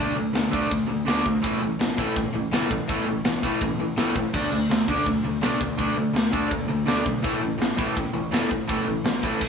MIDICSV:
0, 0, Header, 1, 4, 480
1, 0, Start_track
1, 0, Tempo, 362319
1, 1906, Time_signature, 4, 2, 24, 8
1, 12566, End_track
2, 0, Start_track
2, 0, Title_t, "Overdriven electric guitar"
2, 0, Program_c, 0, 29
2, 0, Note_on_c, 0, 50, 89
2, 0, Note_on_c, 0, 57, 87
2, 0, Note_on_c, 0, 62, 101
2, 195, Note_off_c, 0, 50, 0
2, 195, Note_off_c, 0, 57, 0
2, 211, Note_on_c, 0, 50, 67
2, 211, Note_on_c, 0, 57, 74
2, 213, Note_off_c, 0, 62, 0
2, 434, Note_off_c, 0, 50, 0
2, 434, Note_off_c, 0, 57, 0
2, 457, Note_on_c, 0, 50, 72
2, 470, Note_on_c, 0, 57, 78
2, 668, Note_off_c, 0, 50, 0
2, 684, Note_off_c, 0, 57, 0
2, 684, Note_on_c, 0, 50, 85
2, 699, Note_on_c, 0, 57, 96
2, 708, Note_on_c, 0, 62, 96
2, 916, Note_off_c, 0, 50, 0
2, 928, Note_off_c, 0, 57, 0
2, 932, Note_off_c, 0, 62, 0
2, 932, Note_on_c, 0, 50, 69
2, 941, Note_on_c, 0, 57, 77
2, 1155, Note_off_c, 0, 50, 0
2, 1160, Note_off_c, 0, 57, 0
2, 1169, Note_on_c, 0, 50, 72
2, 1179, Note_on_c, 0, 57, 80
2, 1393, Note_off_c, 0, 50, 0
2, 1398, Note_off_c, 0, 57, 0
2, 1413, Note_on_c, 0, 50, 102
2, 1428, Note_on_c, 0, 57, 95
2, 1431, Note_on_c, 0, 62, 104
2, 1637, Note_off_c, 0, 50, 0
2, 1650, Note_off_c, 0, 57, 0
2, 1653, Note_on_c, 0, 50, 70
2, 1654, Note_off_c, 0, 62, 0
2, 1666, Note_on_c, 0, 57, 74
2, 1876, Note_off_c, 0, 50, 0
2, 1882, Note_off_c, 0, 57, 0
2, 1889, Note_on_c, 0, 45, 92
2, 1895, Note_on_c, 0, 52, 95
2, 1901, Note_on_c, 0, 57, 103
2, 2120, Note_off_c, 0, 45, 0
2, 2126, Note_off_c, 0, 52, 0
2, 2129, Note_off_c, 0, 57, 0
2, 2135, Note_on_c, 0, 45, 66
2, 2142, Note_on_c, 0, 52, 71
2, 2357, Note_off_c, 0, 45, 0
2, 2360, Note_off_c, 0, 52, 0
2, 2378, Note_on_c, 0, 45, 69
2, 2388, Note_on_c, 0, 52, 77
2, 2580, Note_off_c, 0, 45, 0
2, 2595, Note_off_c, 0, 52, 0
2, 2596, Note_on_c, 0, 45, 86
2, 2611, Note_on_c, 0, 52, 93
2, 2617, Note_on_c, 0, 57, 97
2, 2830, Note_off_c, 0, 45, 0
2, 2844, Note_off_c, 0, 52, 0
2, 2846, Note_on_c, 0, 45, 77
2, 2847, Note_off_c, 0, 57, 0
2, 2859, Note_on_c, 0, 52, 78
2, 3072, Note_off_c, 0, 45, 0
2, 3079, Note_off_c, 0, 52, 0
2, 3088, Note_on_c, 0, 45, 78
2, 3097, Note_on_c, 0, 52, 87
2, 3313, Note_off_c, 0, 45, 0
2, 3318, Note_off_c, 0, 52, 0
2, 3334, Note_on_c, 0, 52, 95
2, 3336, Note_on_c, 0, 45, 97
2, 3344, Note_on_c, 0, 57, 97
2, 3552, Note_off_c, 0, 45, 0
2, 3561, Note_off_c, 0, 52, 0
2, 3568, Note_on_c, 0, 45, 70
2, 3571, Note_off_c, 0, 57, 0
2, 3577, Note_on_c, 0, 52, 73
2, 3793, Note_off_c, 0, 45, 0
2, 3798, Note_off_c, 0, 52, 0
2, 3813, Note_on_c, 0, 45, 85
2, 3827, Note_on_c, 0, 52, 98
2, 3828, Note_on_c, 0, 57, 105
2, 4045, Note_off_c, 0, 45, 0
2, 4048, Note_off_c, 0, 52, 0
2, 4053, Note_off_c, 0, 57, 0
2, 4061, Note_on_c, 0, 45, 72
2, 4064, Note_on_c, 0, 52, 77
2, 4279, Note_off_c, 0, 45, 0
2, 4281, Note_off_c, 0, 52, 0
2, 4305, Note_on_c, 0, 45, 72
2, 4320, Note_on_c, 0, 52, 85
2, 4522, Note_off_c, 0, 45, 0
2, 4529, Note_off_c, 0, 52, 0
2, 4554, Note_on_c, 0, 45, 80
2, 4562, Note_on_c, 0, 52, 94
2, 4576, Note_on_c, 0, 57, 101
2, 4776, Note_off_c, 0, 45, 0
2, 4779, Note_off_c, 0, 52, 0
2, 4787, Note_off_c, 0, 57, 0
2, 4793, Note_on_c, 0, 45, 72
2, 4795, Note_on_c, 0, 52, 73
2, 5006, Note_off_c, 0, 45, 0
2, 5007, Note_off_c, 0, 52, 0
2, 5025, Note_on_c, 0, 45, 68
2, 5033, Note_on_c, 0, 52, 74
2, 5238, Note_off_c, 0, 45, 0
2, 5245, Note_off_c, 0, 52, 0
2, 5254, Note_on_c, 0, 45, 83
2, 5270, Note_on_c, 0, 52, 97
2, 5274, Note_on_c, 0, 57, 95
2, 5485, Note_off_c, 0, 45, 0
2, 5494, Note_off_c, 0, 52, 0
2, 5495, Note_off_c, 0, 57, 0
2, 5509, Note_on_c, 0, 52, 76
2, 5513, Note_on_c, 0, 45, 72
2, 5723, Note_off_c, 0, 52, 0
2, 5725, Note_off_c, 0, 45, 0
2, 5742, Note_on_c, 0, 50, 93
2, 5748, Note_on_c, 0, 57, 95
2, 5760, Note_on_c, 0, 62, 94
2, 5969, Note_off_c, 0, 50, 0
2, 5972, Note_off_c, 0, 57, 0
2, 5978, Note_off_c, 0, 62, 0
2, 5986, Note_on_c, 0, 50, 70
2, 5990, Note_on_c, 0, 57, 71
2, 6202, Note_off_c, 0, 50, 0
2, 6204, Note_off_c, 0, 57, 0
2, 6217, Note_on_c, 0, 50, 75
2, 6219, Note_on_c, 0, 57, 76
2, 6437, Note_off_c, 0, 50, 0
2, 6438, Note_off_c, 0, 57, 0
2, 6460, Note_on_c, 0, 50, 86
2, 6472, Note_on_c, 0, 57, 91
2, 6477, Note_on_c, 0, 62, 106
2, 6688, Note_off_c, 0, 50, 0
2, 6694, Note_off_c, 0, 57, 0
2, 6697, Note_off_c, 0, 62, 0
2, 6711, Note_on_c, 0, 50, 70
2, 6712, Note_on_c, 0, 57, 80
2, 6919, Note_off_c, 0, 50, 0
2, 6924, Note_off_c, 0, 57, 0
2, 6935, Note_on_c, 0, 50, 76
2, 6944, Note_on_c, 0, 57, 86
2, 7155, Note_off_c, 0, 50, 0
2, 7160, Note_off_c, 0, 57, 0
2, 7175, Note_on_c, 0, 50, 91
2, 7180, Note_on_c, 0, 57, 97
2, 7190, Note_on_c, 0, 62, 103
2, 7405, Note_off_c, 0, 50, 0
2, 7407, Note_off_c, 0, 57, 0
2, 7413, Note_off_c, 0, 62, 0
2, 7423, Note_on_c, 0, 50, 71
2, 7427, Note_on_c, 0, 57, 77
2, 7639, Note_off_c, 0, 50, 0
2, 7641, Note_off_c, 0, 57, 0
2, 7655, Note_on_c, 0, 50, 96
2, 7667, Note_on_c, 0, 57, 104
2, 7674, Note_on_c, 0, 62, 104
2, 7883, Note_off_c, 0, 57, 0
2, 7885, Note_off_c, 0, 50, 0
2, 7894, Note_off_c, 0, 62, 0
2, 7899, Note_on_c, 0, 57, 73
2, 7901, Note_on_c, 0, 50, 76
2, 8115, Note_off_c, 0, 50, 0
2, 8117, Note_off_c, 0, 57, 0
2, 8130, Note_on_c, 0, 50, 68
2, 8131, Note_on_c, 0, 57, 82
2, 8346, Note_off_c, 0, 50, 0
2, 8353, Note_off_c, 0, 57, 0
2, 8362, Note_on_c, 0, 50, 82
2, 8373, Note_on_c, 0, 57, 91
2, 8376, Note_on_c, 0, 62, 97
2, 8598, Note_off_c, 0, 50, 0
2, 8604, Note_off_c, 0, 57, 0
2, 8605, Note_off_c, 0, 62, 0
2, 8623, Note_on_c, 0, 50, 74
2, 8625, Note_on_c, 0, 57, 75
2, 8839, Note_off_c, 0, 50, 0
2, 8840, Note_off_c, 0, 57, 0
2, 8864, Note_on_c, 0, 50, 73
2, 8868, Note_on_c, 0, 57, 79
2, 9076, Note_off_c, 0, 50, 0
2, 9081, Note_off_c, 0, 57, 0
2, 9092, Note_on_c, 0, 50, 92
2, 9100, Note_on_c, 0, 57, 94
2, 9110, Note_on_c, 0, 62, 102
2, 9309, Note_off_c, 0, 50, 0
2, 9316, Note_off_c, 0, 57, 0
2, 9325, Note_on_c, 0, 50, 76
2, 9332, Note_off_c, 0, 62, 0
2, 9332, Note_on_c, 0, 57, 80
2, 9550, Note_off_c, 0, 50, 0
2, 9553, Note_off_c, 0, 57, 0
2, 9570, Note_on_c, 0, 45, 92
2, 9578, Note_on_c, 0, 52, 95
2, 9585, Note_on_c, 0, 57, 102
2, 9802, Note_off_c, 0, 45, 0
2, 9806, Note_off_c, 0, 52, 0
2, 9809, Note_off_c, 0, 57, 0
2, 9823, Note_on_c, 0, 45, 74
2, 9824, Note_on_c, 0, 52, 80
2, 10026, Note_off_c, 0, 45, 0
2, 10034, Note_off_c, 0, 52, 0
2, 10042, Note_on_c, 0, 45, 79
2, 10050, Note_on_c, 0, 52, 82
2, 10268, Note_off_c, 0, 45, 0
2, 10272, Note_off_c, 0, 52, 0
2, 10298, Note_on_c, 0, 45, 86
2, 10300, Note_on_c, 0, 52, 102
2, 10309, Note_on_c, 0, 57, 105
2, 10526, Note_off_c, 0, 45, 0
2, 10527, Note_off_c, 0, 52, 0
2, 10531, Note_off_c, 0, 57, 0
2, 10542, Note_on_c, 0, 45, 74
2, 10549, Note_on_c, 0, 52, 78
2, 10758, Note_off_c, 0, 45, 0
2, 10761, Note_off_c, 0, 52, 0
2, 10778, Note_on_c, 0, 45, 73
2, 10781, Note_on_c, 0, 52, 79
2, 10996, Note_off_c, 0, 45, 0
2, 10997, Note_off_c, 0, 52, 0
2, 11018, Note_on_c, 0, 45, 90
2, 11028, Note_on_c, 0, 52, 97
2, 11034, Note_on_c, 0, 57, 108
2, 11245, Note_off_c, 0, 45, 0
2, 11250, Note_off_c, 0, 52, 0
2, 11254, Note_off_c, 0, 57, 0
2, 11266, Note_on_c, 0, 45, 64
2, 11266, Note_on_c, 0, 52, 78
2, 11480, Note_off_c, 0, 45, 0
2, 11480, Note_off_c, 0, 52, 0
2, 11497, Note_on_c, 0, 52, 102
2, 11500, Note_on_c, 0, 45, 89
2, 11511, Note_on_c, 0, 57, 98
2, 11725, Note_off_c, 0, 52, 0
2, 11726, Note_off_c, 0, 45, 0
2, 11732, Note_off_c, 0, 57, 0
2, 11756, Note_on_c, 0, 45, 70
2, 11757, Note_on_c, 0, 52, 79
2, 11965, Note_off_c, 0, 45, 0
2, 11965, Note_off_c, 0, 52, 0
2, 11980, Note_on_c, 0, 45, 75
2, 11985, Note_on_c, 0, 52, 74
2, 12191, Note_off_c, 0, 45, 0
2, 12199, Note_off_c, 0, 52, 0
2, 12207, Note_on_c, 0, 45, 89
2, 12221, Note_on_c, 0, 52, 94
2, 12221, Note_on_c, 0, 57, 103
2, 12439, Note_off_c, 0, 45, 0
2, 12446, Note_off_c, 0, 52, 0
2, 12446, Note_off_c, 0, 57, 0
2, 12566, End_track
3, 0, Start_track
3, 0, Title_t, "Picked electric bass"
3, 0, Program_c, 1, 34
3, 0, Note_on_c, 1, 38, 87
3, 143, Note_off_c, 1, 38, 0
3, 199, Note_on_c, 1, 38, 88
3, 371, Note_off_c, 1, 38, 0
3, 441, Note_on_c, 1, 38, 86
3, 612, Note_off_c, 1, 38, 0
3, 703, Note_on_c, 1, 38, 88
3, 867, Note_off_c, 1, 38, 0
3, 943, Note_on_c, 1, 38, 98
3, 1107, Note_off_c, 1, 38, 0
3, 1166, Note_on_c, 1, 38, 89
3, 1336, Note_off_c, 1, 38, 0
3, 1412, Note_on_c, 1, 38, 83
3, 1580, Note_off_c, 1, 38, 0
3, 1660, Note_on_c, 1, 38, 91
3, 1825, Note_off_c, 1, 38, 0
3, 1907, Note_on_c, 1, 33, 94
3, 2070, Note_off_c, 1, 33, 0
3, 2136, Note_on_c, 1, 33, 88
3, 2303, Note_off_c, 1, 33, 0
3, 2378, Note_on_c, 1, 33, 89
3, 2544, Note_off_c, 1, 33, 0
3, 2625, Note_on_c, 1, 33, 84
3, 2789, Note_off_c, 1, 33, 0
3, 2865, Note_on_c, 1, 33, 100
3, 3028, Note_off_c, 1, 33, 0
3, 3099, Note_on_c, 1, 33, 80
3, 3265, Note_off_c, 1, 33, 0
3, 3334, Note_on_c, 1, 30, 80
3, 3501, Note_off_c, 1, 30, 0
3, 3585, Note_on_c, 1, 33, 94
3, 3749, Note_off_c, 1, 33, 0
3, 3824, Note_on_c, 1, 33, 93
3, 3988, Note_off_c, 1, 33, 0
3, 4056, Note_on_c, 1, 33, 87
3, 4223, Note_off_c, 1, 33, 0
3, 4296, Note_on_c, 1, 33, 86
3, 4463, Note_off_c, 1, 33, 0
3, 4540, Note_on_c, 1, 33, 89
3, 4705, Note_off_c, 1, 33, 0
3, 4787, Note_on_c, 1, 33, 93
3, 4950, Note_off_c, 1, 33, 0
3, 5011, Note_on_c, 1, 33, 78
3, 5179, Note_off_c, 1, 33, 0
3, 5259, Note_on_c, 1, 33, 82
3, 5424, Note_off_c, 1, 33, 0
3, 5502, Note_on_c, 1, 33, 88
3, 5666, Note_off_c, 1, 33, 0
3, 5744, Note_on_c, 1, 38, 94
3, 5907, Note_off_c, 1, 38, 0
3, 5992, Note_on_c, 1, 38, 85
3, 6153, Note_off_c, 1, 38, 0
3, 6220, Note_on_c, 1, 38, 84
3, 6384, Note_off_c, 1, 38, 0
3, 6470, Note_on_c, 1, 38, 87
3, 6631, Note_off_c, 1, 38, 0
3, 6707, Note_on_c, 1, 38, 95
3, 6869, Note_off_c, 1, 38, 0
3, 6935, Note_on_c, 1, 38, 82
3, 7101, Note_off_c, 1, 38, 0
3, 7173, Note_on_c, 1, 35, 88
3, 7340, Note_off_c, 1, 35, 0
3, 7431, Note_on_c, 1, 38, 85
3, 7591, Note_off_c, 1, 38, 0
3, 7668, Note_on_c, 1, 38, 90
3, 7830, Note_off_c, 1, 38, 0
3, 7886, Note_on_c, 1, 38, 83
3, 8055, Note_off_c, 1, 38, 0
3, 8128, Note_on_c, 1, 38, 88
3, 8296, Note_off_c, 1, 38, 0
3, 8387, Note_on_c, 1, 38, 91
3, 8549, Note_off_c, 1, 38, 0
3, 8623, Note_on_c, 1, 38, 90
3, 8786, Note_off_c, 1, 38, 0
3, 8864, Note_on_c, 1, 38, 89
3, 9027, Note_off_c, 1, 38, 0
3, 9100, Note_on_c, 1, 38, 81
3, 9264, Note_off_c, 1, 38, 0
3, 9350, Note_on_c, 1, 35, 97
3, 9511, Note_off_c, 1, 35, 0
3, 9593, Note_on_c, 1, 33, 89
3, 9753, Note_off_c, 1, 33, 0
3, 9820, Note_on_c, 1, 33, 91
3, 9984, Note_off_c, 1, 33, 0
3, 10058, Note_on_c, 1, 33, 88
3, 10223, Note_off_c, 1, 33, 0
3, 10313, Note_on_c, 1, 33, 87
3, 10473, Note_off_c, 1, 33, 0
3, 10555, Note_on_c, 1, 33, 98
3, 10714, Note_off_c, 1, 33, 0
3, 10786, Note_on_c, 1, 33, 93
3, 10947, Note_off_c, 1, 33, 0
3, 11019, Note_on_c, 1, 30, 86
3, 11183, Note_off_c, 1, 30, 0
3, 11266, Note_on_c, 1, 33, 99
3, 11427, Note_off_c, 1, 33, 0
3, 11511, Note_on_c, 1, 33, 95
3, 11671, Note_off_c, 1, 33, 0
3, 11752, Note_on_c, 1, 33, 86
3, 11911, Note_off_c, 1, 33, 0
3, 11989, Note_on_c, 1, 33, 81
3, 12149, Note_off_c, 1, 33, 0
3, 12228, Note_on_c, 1, 33, 89
3, 12388, Note_off_c, 1, 33, 0
3, 12566, End_track
4, 0, Start_track
4, 0, Title_t, "Drums"
4, 462, Note_on_c, 9, 46, 60
4, 470, Note_on_c, 9, 38, 113
4, 594, Note_off_c, 9, 46, 0
4, 602, Note_off_c, 9, 38, 0
4, 707, Note_on_c, 9, 36, 81
4, 839, Note_off_c, 9, 36, 0
4, 947, Note_on_c, 9, 36, 109
4, 954, Note_on_c, 9, 46, 60
4, 1079, Note_off_c, 9, 36, 0
4, 1086, Note_off_c, 9, 46, 0
4, 1424, Note_on_c, 9, 46, 60
4, 1432, Note_on_c, 9, 38, 114
4, 1557, Note_off_c, 9, 46, 0
4, 1565, Note_off_c, 9, 38, 0
4, 1667, Note_on_c, 9, 36, 85
4, 1799, Note_off_c, 9, 36, 0
4, 1909, Note_on_c, 9, 36, 111
4, 1913, Note_on_c, 9, 46, 58
4, 2041, Note_off_c, 9, 36, 0
4, 2045, Note_off_c, 9, 46, 0
4, 2390, Note_on_c, 9, 46, 57
4, 2398, Note_on_c, 9, 38, 113
4, 2523, Note_off_c, 9, 46, 0
4, 2531, Note_off_c, 9, 38, 0
4, 2627, Note_on_c, 9, 36, 82
4, 2760, Note_off_c, 9, 36, 0
4, 2867, Note_on_c, 9, 36, 107
4, 2873, Note_on_c, 9, 46, 56
4, 3000, Note_off_c, 9, 36, 0
4, 3006, Note_off_c, 9, 46, 0
4, 3348, Note_on_c, 9, 46, 54
4, 3356, Note_on_c, 9, 38, 115
4, 3481, Note_off_c, 9, 46, 0
4, 3488, Note_off_c, 9, 38, 0
4, 3588, Note_on_c, 9, 36, 89
4, 3721, Note_off_c, 9, 36, 0
4, 3830, Note_on_c, 9, 36, 110
4, 3833, Note_on_c, 9, 46, 58
4, 3962, Note_off_c, 9, 36, 0
4, 3966, Note_off_c, 9, 46, 0
4, 4299, Note_on_c, 9, 46, 65
4, 4307, Note_on_c, 9, 38, 106
4, 4431, Note_off_c, 9, 46, 0
4, 4439, Note_off_c, 9, 38, 0
4, 4547, Note_on_c, 9, 36, 85
4, 4679, Note_off_c, 9, 36, 0
4, 4783, Note_on_c, 9, 46, 66
4, 4786, Note_on_c, 9, 36, 108
4, 4915, Note_off_c, 9, 46, 0
4, 4919, Note_off_c, 9, 36, 0
4, 5261, Note_on_c, 9, 46, 61
4, 5269, Note_on_c, 9, 38, 116
4, 5394, Note_off_c, 9, 46, 0
4, 5402, Note_off_c, 9, 38, 0
4, 5507, Note_on_c, 9, 36, 86
4, 5640, Note_off_c, 9, 36, 0
4, 5749, Note_on_c, 9, 36, 116
4, 5751, Note_on_c, 9, 49, 100
4, 5881, Note_off_c, 9, 36, 0
4, 5884, Note_off_c, 9, 49, 0
4, 6237, Note_on_c, 9, 46, 61
4, 6245, Note_on_c, 9, 38, 108
4, 6370, Note_off_c, 9, 46, 0
4, 6377, Note_off_c, 9, 38, 0
4, 6468, Note_on_c, 9, 36, 85
4, 6600, Note_off_c, 9, 36, 0
4, 6704, Note_on_c, 9, 46, 58
4, 6707, Note_on_c, 9, 36, 115
4, 6836, Note_off_c, 9, 46, 0
4, 6840, Note_off_c, 9, 36, 0
4, 7187, Note_on_c, 9, 46, 56
4, 7195, Note_on_c, 9, 38, 107
4, 7319, Note_off_c, 9, 46, 0
4, 7327, Note_off_c, 9, 38, 0
4, 7429, Note_on_c, 9, 36, 82
4, 7562, Note_off_c, 9, 36, 0
4, 7664, Note_on_c, 9, 46, 60
4, 7667, Note_on_c, 9, 36, 106
4, 7797, Note_off_c, 9, 46, 0
4, 7799, Note_off_c, 9, 36, 0
4, 8157, Note_on_c, 9, 46, 57
4, 8165, Note_on_c, 9, 38, 117
4, 8289, Note_off_c, 9, 46, 0
4, 8297, Note_off_c, 9, 38, 0
4, 8389, Note_on_c, 9, 36, 86
4, 8522, Note_off_c, 9, 36, 0
4, 8628, Note_on_c, 9, 36, 110
4, 8632, Note_on_c, 9, 46, 64
4, 8760, Note_off_c, 9, 36, 0
4, 8764, Note_off_c, 9, 46, 0
4, 9111, Note_on_c, 9, 46, 61
4, 9119, Note_on_c, 9, 38, 109
4, 9243, Note_off_c, 9, 46, 0
4, 9251, Note_off_c, 9, 38, 0
4, 9353, Note_on_c, 9, 36, 83
4, 9485, Note_off_c, 9, 36, 0
4, 9595, Note_on_c, 9, 36, 115
4, 9604, Note_on_c, 9, 46, 62
4, 9728, Note_off_c, 9, 36, 0
4, 9737, Note_off_c, 9, 46, 0
4, 10083, Note_on_c, 9, 46, 62
4, 10091, Note_on_c, 9, 38, 107
4, 10216, Note_off_c, 9, 46, 0
4, 10224, Note_off_c, 9, 38, 0
4, 10315, Note_on_c, 9, 36, 93
4, 10448, Note_off_c, 9, 36, 0
4, 10556, Note_on_c, 9, 36, 111
4, 10566, Note_on_c, 9, 46, 62
4, 10689, Note_off_c, 9, 36, 0
4, 10699, Note_off_c, 9, 46, 0
4, 11042, Note_on_c, 9, 46, 53
4, 11050, Note_on_c, 9, 38, 111
4, 11174, Note_off_c, 9, 46, 0
4, 11182, Note_off_c, 9, 38, 0
4, 11274, Note_on_c, 9, 36, 83
4, 11406, Note_off_c, 9, 36, 0
4, 11515, Note_on_c, 9, 36, 108
4, 11522, Note_on_c, 9, 46, 56
4, 11648, Note_off_c, 9, 36, 0
4, 11655, Note_off_c, 9, 46, 0
4, 11990, Note_on_c, 9, 46, 53
4, 11998, Note_on_c, 9, 38, 113
4, 12122, Note_off_c, 9, 46, 0
4, 12130, Note_off_c, 9, 38, 0
4, 12231, Note_on_c, 9, 36, 91
4, 12364, Note_off_c, 9, 36, 0
4, 12465, Note_on_c, 9, 57, 106
4, 12470, Note_on_c, 9, 36, 111
4, 12566, Note_off_c, 9, 36, 0
4, 12566, Note_off_c, 9, 57, 0
4, 12566, End_track
0, 0, End_of_file